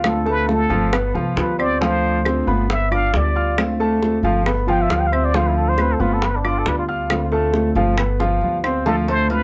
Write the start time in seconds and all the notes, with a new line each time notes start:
Already playing: D2 F4 F5 F6
0.04 D3 A3 C4 F4 A4, high bongo, claves
0.25 A3 A4 B4 A5, high bongo
0.49 D3 A3 C4 F4 A4, high bongo
0.70 G1 F3 A3 C4 F4 F5, high bongo
0.92 B3 B4 B5, muted nylon-string guitar stroke, high bongo, claves
1.14 C2 F3 B3 F4 F5, high bongo
1.36 D2 G3 B3 F4 B4, high bongo, low bongo
1.59 C4 C5 D5 C6, claves
1.81 D3 F3 A3 C4 F4 C5 F5, high bongo
2.25 D3 A3 C4 F4 C5 C6, high bongo, claves
2.47 G1 A3 B3 C4 F4 B4 B5
2.69 E5, muted nylon-string guitar stroke, high bongo
2.91 B3 D4 F4 D5 F5 D6, claves
3.13 D2 G3 B3 F4 D5, high bongo, low bongo
3.35 F4 F5 F6
3.57 D3 A3 C4 F4, high bongo, claves
3.80 A3 A4 A5, high bongo
4.01 D3 A3 C4 F4, high bongo
4.23 G1 F3 A3 C4 F4 F5, high bongo
4.44 B3 B4 B5, muted nylon-string guitar stroke, high bongo, claves
4.67 F3 B3 F4 F5 G5, high bongo
4.82 E5
4.89 D2 G3 B3 F4 F5, high bongo, low bongo
5.00 G5
5.07 F5
5.12 C4 C5 E5 C6, claves
5.25 D5
5.34 D3 F3 A3 C4 F4 C5 F5, high bongo
5.48 E4
5.57 A4
5.69 C5
5.78 D3 A3 C4 F4 B4 C5 C6, high bongo, claves
5.92 A4
6.00 G1 A3 B3 C4 F4 B4 B5
6.13 A4
6.22 B4, muted nylon-string guitar stroke, high bongo
6.36 D4
6.44 B3 D4 F4 D5 D6, claves
6.59 A4
6.66 D2 G3 B3 F4 B4, high bongo, low bongo
6.79 F4
6.88 F4 F5 F6
7.10 D3 A3 C4 F4, high bongo, claves
7.32 A3 A4 A5, high bongo
7.54 D3 A3 C4 F4, high bongo
7.75 G1 F3 A3 C4 F4 F5, high bongo
7.98 B3 B4 B5, muted nylon-string guitar stroke, high bongo, claves
8.20 F3 B3 F4 F5, high bongo
8.41 D2 G3 B3 F4
8.64 C4 C5 C6, low bongo, claves
8.86 D3 F3 A3 C4 F4 A4 F5, cowbell
9.08 A3 A4 C5 A5, cowbell
9.30 D3 A3 C4 F4 B4 F5 F6, cowbell